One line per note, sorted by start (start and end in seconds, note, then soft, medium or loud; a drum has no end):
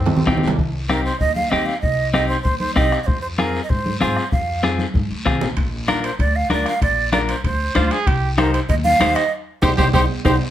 0.00 0.24 C4 medium
0.06 low conga medium
0.06 low timbale medium
0.17 low conga medium
0.27 0.42 A#1 medium
0.27 0.49 C4 medium
0.27 0.49 D#4 medium
0.27 0.49 G4 medium
0.27 bombo low medium
0.27 bombo rim medium
0.27 low conga medium
0.27 low timbale medium
0.27 short guiro medium
0.37 low conga medium
0.43 0.57 C2 medium
0.43 short guiro medium
0.47 low conga loud
0.47 low timbale medium
0.58 1.08 C2 medium
0.58 bombo low medium
0.58 long guiro medium
0.89 1.11 C4 medium
0.89 1.12 D#4 medium
0.89 1.12 G4 medium
0.89 1.04 A#4 medium
0.89 bombo rim medium
0.89 high conga medium
0.89 short guiro medium
1.05 1.19 C5 medium
1.05 short guiro medium
1.20 1.46 D#2 medium
1.20 1.35 D#5 loud
1.20 bombo low medium
1.20 long guiro medium
1.35 1.51 F5 medium
1.35 high conga medium
1.50 1.65 D#2 medium
1.50 1.74 C4 medium
1.50 1.74 D#4 medium
1.50 1.74 G4 medium
1.50 1.67 D#5 medium
1.50 bombo rim medium
1.50 high conga medium
1.50 short guiro medium
1.66 1.80 F5 medium
1.66 short guiro medium
1.81 2.33 C2 medium
1.81 2.11 D#5 medium
1.81 bombo low medium
1.81 long guiro medium
2.13 2.36 C4 medium
2.13 2.36 D#4 medium
2.13 2.36 G4 medium
2.13 2.28 D#5 medium
2.13 bombo rim medium
2.13 high conga medium
2.13 short guiro medium
2.28 2.42 C5 medium
2.28 short guiro medium
2.42 2.70 D#2 medium
2.42 2.58 C5 medium
2.42 bombo low medium
2.42 long guiro medium
2.59 2.74 C5 medium
2.59 high conga medium
2.75 2.89 C2 medium
2.75 2.98 C4 medium
2.75 2.98 D#4 soft
2.75 2.99 G4 medium
2.75 3.01 D#5 medium
2.75 bombo low medium
2.75 bombo rim medium
2.75 high conga medium
2.75 short guiro medium
2.92 bombo rim medium
2.92 short guiro medium
3.03 3.21 C5 medium
3.03 3.07 D#5 medium
3.08 3.58 F2 medium
3.08 bombo low medium
3.08 long guiro medium
3.21 3.27 C5 medium
3.37 3.61 C4 medium
3.37 3.61 F4 medium
3.37 3.61 G#4 medium
3.37 3.61 A#4 medium
3.37 bombo rim medium
3.37 high conga medium
3.37 short guiro medium
3.55 short guiro medium
3.63 3.71 D#5 medium
3.69 3.95 G#2 medium
3.69 4.00 C5 medium
3.69 bombo low medium
3.69 long guiro medium
3.86 high conga medium
4.01 4.14 G#2 loud
4.01 4.23 C4 medium
4.01 4.23 F4 medium
4.01 4.23 G#4 medium
4.01 4.30 C5 medium
4.01 bombo rim medium
4.01 high conga medium
4.01 short guiro medium
4.17 bombo rim medium
4.17 short guiro medium
4.32 4.82 F2 medium
4.32 4.61 F5 medium
4.32 bombo low medium
4.32 long guiro medium
4.63 4.85 C4 medium
4.63 4.86 F4 medium
4.63 4.86 G#4 medium
4.63 bombo rim medium
4.63 high conga medium
4.63 short guiro medium
4.78 high conga medium
4.78 short guiro medium
4.94 5.08 G#2 medium
4.94 bombo low medium
4.94 high conga medium
4.94 long guiro medium
5.10 5.24 D2 medium
5.25 5.40 C2 medium
5.25 5.48 C4 medium
5.25 5.48 F4 medium
5.25 5.48 G#4 medium
5.25 bombo low medium
5.25 bombo rim medium
5.25 low conga medium
5.25 short guiro medium
5.41 5.56 A#1 medium
5.41 low conga medium
5.41 short guiro medium
5.57 6.07 A#1 medium
5.57 bombo low medium
5.57 high timbale medium
5.57 long guiro medium
5.88 6.10 D4 medium
5.88 6.10 F4 medium
5.88 6.03 A#4 medium
5.88 6.11 A#4 medium
5.88 bombo rim medium
5.88 high conga medium
5.88 high timbale medium
5.88 short guiro medium
6.03 6.18 C5 medium
6.03 high timbale medium
6.03 short guiro medium
6.19 6.44 D2 medium
6.19 6.37 D5 medium
6.19 bombo low medium
6.19 high timbale medium
6.19 long guiro medium
6.36 6.51 F5 medium
6.50 6.63 D2 loud
6.50 6.72 D4 medium
6.50 6.73 F4 medium
6.50 6.73 A#4 medium
6.50 6.66 D5 medium
6.50 bombo rim medium
6.50 high conga medium
6.50 high timbale medium
6.50 short guiro medium
6.66 6.82 F5 medium
6.66 bombo rim medium
6.66 high timbale medium
6.66 short guiro medium
6.82 7.32 A#1 medium
6.82 7.11 D5 medium
6.82 bombo low medium
6.82 high timbale medium
6.82 long guiro medium
7.12 7.35 D4 medium
7.12 7.35 F4 medium
7.12 7.35 A#4 medium
7.12 7.19 D5 medium
7.12 bombo rim medium
7.12 high conga medium
7.12 high timbale medium
7.12 short guiro medium
7.29 7.44 C5 medium
7.29 high timbale medium
7.29 short guiro medium
7.44 7.69 D2 medium
7.44 7.88 C5 medium
7.44 bombo low medium
7.44 high timbale medium
7.44 long guiro medium
7.75 7.88 D2 loud
7.75 7.97 D4 medium
7.75 7.93 F4 medium
7.75 7.98 F4 medium
7.75 7.98 C5 medium
7.75 bombo rim medium
7.75 high conga medium
7.75 high timbale medium
7.75 short guiro medium
7.91 8.08 G#4 loud
7.91 high timbale medium
7.91 short guiro medium
8.07 8.57 C2 loud
8.07 8.30 G4 medium
8.07 bombo low medium
8.07 high timbale medium
8.07 long guiro medium
8.38 8.60 D#4 medium
8.38 8.60 G4 medium
8.38 8.53 A#4 medium
8.38 8.60 C5 medium
8.38 bombo rim medium
8.38 high conga medium
8.38 high timbale medium
8.38 short guiro medium
8.54 8.60 C5 medium
8.54 high timbale medium
8.54 short guiro medium
8.69 8.94 D#2 medium
8.69 8.75 D#5 loud
8.69 bombo low medium
8.69 high timbale medium
8.69 long guiro medium
8.84 9.17 F5 loud
8.84 high conga medium
9.00 9.13 D#2 medium
9.00 9.22 D#4 medium
9.00 9.23 G4 medium
9.00 9.23 C5 medium
9.00 bombo rim medium
9.00 high conga medium
9.00 high timbale medium
9.00 short guiro medium
9.15 9.31 D#5 medium
9.15 bombo rim medium
9.15 high timbale medium
9.15 short guiro medium
9.62 9.74 C2 medium
9.62 9.73 D#4 medium
9.62 9.70 G4 loud
9.62 9.73 G4 medium
9.62 9.72 C5 medium
9.62 9.73 C5 medium
9.62 bombo low loud
9.62 high conga loud
9.62 high timbale medium
9.62 long guiro loud
9.77 9.90 C2 loud
9.77 9.88 D#4 medium
9.77 9.85 G4 medium
9.77 9.88 G4 medium
9.77 9.88 C5 medium
9.77 9.89 C5 medium
9.77 bombo low medium
9.77 high conga loud
9.77 high timbale medium
9.77 long guiro medium
9.93 10.06 C2 loud
9.93 10.04 D#4 medium
9.93 10.01 G4 medium
9.93 10.04 G4 medium
9.93 10.04 C5 loud
9.93 10.04 C5 medium
9.93 bombo low medium
9.93 high conga medium
9.93 high timbale medium
9.93 long guiro medium
10.25 10.37 C2 medium
10.25 10.35 D#4 medium
10.25 10.33 G4 medium
10.25 10.35 G4 medium
10.25 10.35 C5 medium
10.25 bombo low medium
10.25 high conga loud
10.25 high timbale loud
10.25 long guiro medium